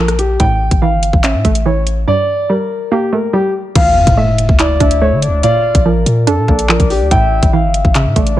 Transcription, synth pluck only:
0.00 0.40 F3 medium
0.00 0.40 A#3 medium
0.00 0.40 D4 loud
0.40 1.45 A2 loud
0.82 1.64 E3 medium
1.24 2.08 C#4 loud
1.45 2.08 A3 medium
1.66 2.08 E3 medium
2.07 3.12 G2 medium
2.50 3.32 G3 medium
2.92 3.76 A#3 medium
3.13 3.76 A3 medium
3.33 3.75 G3 medium
3.76 4.80 E3 medium
4.17 5.00 A3 medium
4.60 5.43 E4 loud
4.80 5.43 D4 medium
5.02 5.43 A3 medium
5.43 6.48 A#2 medium
5.85 6.68 F3 medium
6.27 7.11 D4 loud
6.48 7.11 A#3 medium
6.69 7.11 F3 medium
7.11 8.16 A2 loud
7.53 8.36 E3 medium
7.95 8.40 C#3 loud
8.16 8.40 A3 medium

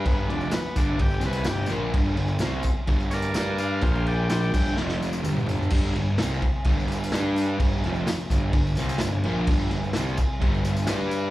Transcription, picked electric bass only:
0.06 0.27 G1 loud
0.33 0.53 F1 loud
0.56 muted picked electric bass stroke soft
0.76 0.98 G1 medium
1.01 1.22 G1 medium
1.24 1.46 C2 loud
1.48 1.69 G1 medium
1.72 1.93 A#1 loud
1.95 2.17 G1 loud
2.17 2.39 G1 medium
2.39 2.62 C2 medium
2.64 muted picked electric bass stroke soft
2.89 3.33 G1 loud
3.36 3.80 G2 loud
3.83 4.50 A#1 loud
4.54 4.76 G1 loud
4.79 5.22 F1 medium
5.26 5.69 G1 medium
5.72 5.94 G1 loud
5.95 6.17 G1 loud
6.18 6.41 C2 loud
6.43 muted picked electric bass stroke soft
6.66 7.10 G1 loud
7.13 7.57 G2 loud
7.60 7.82 G1 loud
7.86 8.07 F1 loud
8.08 muted picked electric bass stroke soft
8.31 8.53 G1 loud
8.54 8.76 G1 medium
8.78 9.00 C2 loud
9.01 9.23 G1 medium
9.25 9.47 A#1 loud
9.49 9.70 G1 loud
9.72 9.94 G1 medium
9.97 10.18 C2 loud
10.19 muted picked electric bass stroke soft
10.42 10.86 G1 medium
10.90 11.30 G2 loud

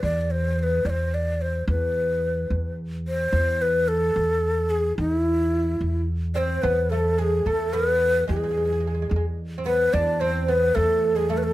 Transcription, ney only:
0.03 0.21 D5 medium
0.21 0.32 D5 medium
0.31 0.59 C5 medium
0.59 0.64 C5 medium
0.63 0.88 B4 medium
0.86 1.16 C5 medium
0.86 0.91 D5 medium
1.14 1.43 D5 medium
1.41 1.69 C5 medium
1.69 2.75 B4 medium
3.08 3.63 C5 medium
3.62 3.90 B4 medium
3.88 4.72 A4 medium
4.70 4.97 G#4 medium
4.98 5.15 D#4 medium
5.15 6.04 E4 medium
6.34 6.64 C5 medium
6.34 6.39 D5 medium
6.62 6.92 B4 medium
6.90 7.20 A4 medium
7.19 7.48 G#4 medium
7.46 7.75 A4 medium
7.74 8.29 B4 medium
8.30 9.35 G#4 medium
9.66 9.95 B4 medium
9.93 10.22 D5 medium
10.20 10.50 C5 medium
10.49 10.77 B4 medium
10.75 11.17 A4 medium
11.16 11.31 G#4 medium
11.30 11.39 A4 medium
11.38 11.45 B4 medium
11.43 11.53 A4 medium

